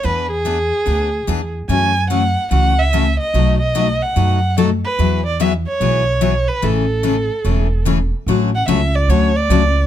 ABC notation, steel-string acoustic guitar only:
X:1
M:4/4
L:1/8
Q:"Swing" 1/4=146
K:Emix
V:1 name="Steel-string acoustic guitar"
[E,B,DG] z [E,B,DG] z [E,B,DG] z [E,B,DG] z | [C,E,A,CF] z [C,E,A,CF] z [C,E,A,CF] z [C,E,A,CF] z | [B,,F,A,^DF] z [B,,F,A,DF] z [B,,F,A,DF] z [B,,F,A,DF] z | [E,F,B,EG] z [E,F,B,EG] z [E,F,B,EG] z [E,F,B,EG] z |
[C,E,A,CG] z [C,E,A,CG] z [C,E,A,CG] z [C,E,A,CG] z | [D,F,A,CF] z [D,F,A,CF] z [D,F,A,CF] z [D,F,A,CF] z |]